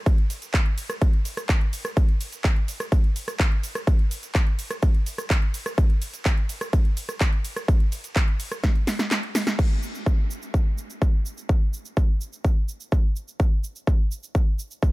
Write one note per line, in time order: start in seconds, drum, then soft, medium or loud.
0.06 kick loud
0.06 closed hi-hat medium
0.06 ride medium
0.06 shaker soft
0.18 closed hi-hat soft
0.30 open hi-hat loud
0.30 ride medium
0.30 shaker medium
0.42 closed hi-hat soft
0.42 shaker soft
0.54 kick loud
0.54 clap loud
0.54 closed hi-hat soft
0.54 ride medium
0.54 shaker soft
0.66 closed hi-hat soft
0.78 open hi-hat loud
0.78 ride medium
0.78 shaker medium
0.90 cross-stick medium
0.90 closed hi-hat medium
0.90 shaker soft
1.02 kick loud
1.02 closed hi-hat medium
1.02 ride medium
1.02 shaker soft
1.13 closed hi-hat soft
1.25 open hi-hat loud
1.25 ride medium
1.25 shaker medium
1.37 cross-stick medium
1.37 closed hi-hat medium
1.37 shaker soft
1.49 kick loud
1.49 clap loud
1.49 closed hi-hat medium
1.49 ride medium
1.49 shaker soft
1.61 closed hi-hat soft
1.73 open hi-hat loud
1.73 ride medium
1.73 shaker medium
1.85 cross-stick medium
1.85 closed hi-hat medium
1.85 shaker soft
1.97 kick loud
1.97 closed hi-hat medium
1.97 ride medium
1.97 shaker soft
2.09 closed hi-hat soft
2.21 open hi-hat loud
2.21 ride medium
2.21 shaker medium
2.32 closed hi-hat medium
2.32 shaker soft
2.44 kick loud
2.44 clap loud
2.44 closed hi-hat soft
2.44 ride medium
2.44 shaker soft
2.56 closed hi-hat soft
2.68 open hi-hat loud
2.68 ride medium
2.68 shaker medium
2.80 cross-stick medium
2.80 closed hi-hat medium
2.80 shaker soft
2.92 kick loud
2.92 closed hi-hat medium
2.92 ride medium
2.92 shaker soft
3.04 closed hi-hat soft
3.16 open hi-hat loud
3.16 ride medium
3.16 shaker medium
3.28 cross-stick medium
3.28 closed hi-hat medium
3.28 shaker soft
3.39 kick loud
3.39 clap loud
3.39 closed hi-hat medium
3.39 ride medium
3.39 shaker soft
3.52 closed hi-hat soft
3.63 open hi-hat loud
3.63 ride medium
3.63 shaker medium
3.75 cross-stick medium
3.75 closed hi-hat medium
3.75 shaker soft
3.87 kick loud
3.87 closed hi-hat medium
3.87 ride medium
3.87 shaker soft
3.99 closed hi-hat soft
4.11 open hi-hat loud
4.11 ride medium
4.11 shaker medium
4.23 closed hi-hat medium
4.23 shaker soft
4.35 kick loud
4.35 clap loud
4.35 closed hi-hat medium
4.35 ride medium
4.35 shaker soft
4.47 closed hi-hat soft
4.59 open hi-hat loud
4.59 ride medium
4.59 shaker medium
4.71 cross-stick medium
4.71 closed hi-hat medium
4.71 shaker soft
4.82 kick loud
4.82 closed hi-hat medium
4.82 ride medium
4.82 shaker soft
4.95 closed hi-hat soft
5.06 open hi-hat loud
5.06 ride medium
5.06 shaker medium
5.18 cross-stick medium
5.18 closed hi-hat medium
5.18 shaker soft
5.30 kick loud
5.30 clap loud
5.30 closed hi-hat medium
5.30 ride medium
5.30 shaker soft
5.42 closed hi-hat soft
5.54 open hi-hat loud
5.54 ride medium
5.54 shaker medium
5.66 cross-stick medium
5.66 closed hi-hat medium
5.66 shaker soft
5.78 kick loud
5.78 closed hi-hat medium
5.78 ride medium
5.78 shaker soft
5.90 closed hi-hat soft
6.02 open hi-hat loud
6.02 ride medium
6.02 shaker medium
6.14 closed hi-hat medium
6.14 shaker soft
6.25 kick loud
6.25 clap loud
6.25 closed hi-hat medium
6.25 ride medium
6.25 shaker soft
6.37 closed hi-hat soft
6.49 open hi-hat loud
6.49 ride medium
6.49 shaker medium
6.61 cross-stick medium
6.61 closed hi-hat medium
6.61 shaker soft
6.73 kick loud
6.73 closed hi-hat medium
6.73 ride medium
6.73 shaker soft
6.85 closed hi-hat soft
6.97 open hi-hat loud
6.97 ride medium
6.97 shaker medium
7.09 cross-stick medium
7.09 closed hi-hat medium
7.09 shaker soft
7.20 kick loud
7.20 clap loud
7.20 closed hi-hat medium
7.20 ride medium
7.20 shaker soft
7.33 closed hi-hat soft
7.45 open hi-hat loud
7.45 ride medium
7.45 shaker medium
7.57 cross-stick medium
7.57 closed hi-hat medium
7.57 shaker soft
7.68 kick loud
7.68 closed hi-hat medium
7.68 ride medium
7.68 shaker soft
7.80 closed hi-hat soft
7.92 open hi-hat loud
7.92 ride medium
7.92 shaker medium
8.04 closed hi-hat medium
8.04 shaker soft
8.16 kick loud
8.16 clap loud
8.16 closed hi-hat medium
8.16 ride medium
8.16 shaker soft
8.28 closed hi-hat soft
8.40 open hi-hat loud
8.40 ride medium
8.40 shaker medium
8.52 cross-stick medium
8.52 closed hi-hat medium
8.52 shaker soft
8.64 kick loud
8.64 snare medium
8.64 closed hi-hat medium
8.64 ride medium
8.64 shaker soft
8.76 closed hi-hat soft
8.87 snare medium
8.87 open hi-hat loud
8.87 ride medium
8.87 shaker medium
8.99 snare medium
8.99 closed hi-hat medium
8.99 shaker soft
9.11 snare loud
9.11 clap loud
9.11 closed hi-hat medium
9.11 ride medium
9.11 shaker soft
9.23 closed hi-hat soft
9.35 snare loud
9.35 open hi-hat loud
9.35 ride medium
9.35 shaker medium
9.47 snare medium
9.47 closed hi-hat medium
9.47 shaker soft
9.59 kick loud
9.59 crash medium
9.59 shaker soft
9.83 shaker medium
9.95 shaker soft
10.06 kick loud
10.06 shaker soft
10.31 shaker medium
10.42 shaker soft
10.54 kick loud
10.54 shaker soft
10.78 shaker medium
10.90 shaker soft
11.02 kick loud
11.02 shaker soft
11.26 shaker medium
11.38 shaker soft
11.49 kick loud
11.49 shaker soft
11.73 shaker medium
11.85 shaker soft
11.97 kick loud
11.97 shaker soft
12.21 shaker medium
12.33 shaker soft
12.45 kick loud
12.45 shaker soft
12.69 shaker medium
12.80 shaker soft
12.92 kick loud
12.92 shaker soft
13.16 shaker medium
13.28 shaker soft
13.40 kick loud
13.40 shaker soft
13.64 shaker medium
13.76 shaker soft
13.87 kick loud
13.87 shaker soft
14.11 shaker medium
14.23 shaker soft
14.35 kick loud
14.35 shaker soft
14.59 shaker medium
14.71 shaker soft
14.83 kick loud
14.83 shaker soft